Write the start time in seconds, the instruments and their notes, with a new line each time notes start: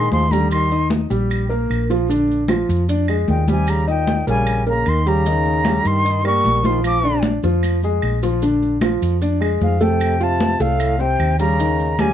Already playing: trombone D#3, grand piano G#3 G#4, flute C6
0.12 fingered electric bass D#2, trombone F3, flute C6, high conga, maracas
0.31 trombone D3, grand piano G3 G4, flute A#5, high conga, maracas
0.51 trombone D#3, flute C6, high conga, claves, maracas
0.71 grand piano D#4 D#5, high conga, maracas
0.90 high conga, maracas
1.10 fingered electric bass A#1, grand piano G3 G4, high conga, maracas
1.30 high conga, claves, maracas
1.49 grand piano A#3 A#4, high conga, maracas
1.70 fingered electric bass A#1, high conga, claves, maracas
1.90 grand piano F3 F4, high conga, maracas
2.08 grand piano D3 D4, high conga, maracas
2.28 high conga, maracas
2.48 grand piano F3 F4, high conga, claves, maracas
2.69 fingered electric bass F2, high conga, maracas
2.88 grand piano D4 D5, high conga, maracas
3.08 grand piano G#3 G#4, high conga, claves, maracas
3.28 fingered electric bass D#2, trombone A#2, flute G5, high conga, maracas
3.48 trombone C3, grand piano G3 G4, flute G#5, high conga, maracas
3.67 trombone C#3, flute A#5, high conga, claves, maracas
3.87 trombone A#2, grand piano D#4 D#5, flute G5, high conga, maracas
4.07 high conga, maracas
4.27 fingered electric bass A#1, trombone C#3, grand piano G3 A#4, flute G#5, high conga, maracas
4.46 high conga, claves, maracas
4.66 trombone C#3, grand piano A#3 A#4, flute A#5, high conga, maracas
4.86 fingered electric bass D#2, trombone D#3, flute C6, high conga, claves, maracas
5.06 trombone C#3, grand piano G3 G4, flute A#5, high conga, maracas
5.26 grand piano D#3 D#4, high conga, maracas
5.45 high conga, maracas
5.65 grand piano G3 G4, high conga, claves, maracas
5.84 fingered electric bass G2, trombone D#3, flute C6, high conga, maracas
6.05 grand piano D#4 D#5, high conga, maracas
6.24 trombone G3, grand piano A#3 A#4, flute C#6, high conga, claves, maracas
6.44 fingered electric bass A#1, high conga, maracas
6.64 trombone D#3, grand piano F3 F4, flute C6, high conga, maracas
6.83 trombone F3, flute D6, high conga, claves, maracas
7.03 grand piano D4 D5, high conga, maracas
7.23 high conga, maracas
7.42 fingered electric bass F2, grand piano F3 F4, high conga, maracas
7.63 high conga, claves, maracas
7.83 grand piano G#3 G#4, high conga, maracas
8.02 fingered electric bass A#1, high conga, claves, maracas
8.23 grand piano F3 F4, high conga, maracas
8.42 grand piano D3 D4, high conga, maracas
8.62 high conga, maracas
8.81 grand piano F3 F4, high conga, claves, maracas
9.02 fingered electric bass F2, high conga, maracas
9.21 grand piano D4 D5, high conga, maracas
9.41 grand piano G#3 G#4, high conga, claves, maracas
9.61 fingered electric bass F2, trombone G#2, flute F5, high conga, maracas
9.80 trombone C3, grand piano A3 A4, flute G5, high conga, maracas
10.00 high conga, claves, maracas
10.20 trombone C3, grand piano F4 F5, flute A5, high conga, maracas
10.40 high conga, maracas
10.60 fingered electric bass C2, trombone A2, grand piano A3 A4, flute F5, high conga, maracas
10.80 high conga, claves, maracas
10.99 trombone C3, grand piano C4 C5, flute G5, high conga, maracas
11.19 fingered electric bass D#2, high conga, claves, maracas
11.39 trombone C#3, grand piano G3 G4, flute A#5, high conga, maracas
11.59 grand piano D#3 D#4, high conga, maracas
11.79 high conga, maracas
11.98 trombone C#3, grand piano G3 G4, flute G#5, high conga, claves, maracas